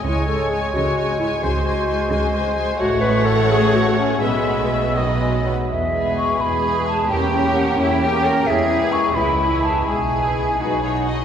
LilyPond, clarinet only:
\new Staff \with { instrumentName = "Clarinet" } { \time 6/8 \key gis \phrygian \tempo 4. = 86 e'8 a'8 gis'8 fis'4 e'8 | fis'2~ fis'8 r8 | \key e \major fis'8 b'8 a'8 gis'8 fis'8 cis'8 | b2~ b8 r8 |
r2. | r2. | r2. | r2. | }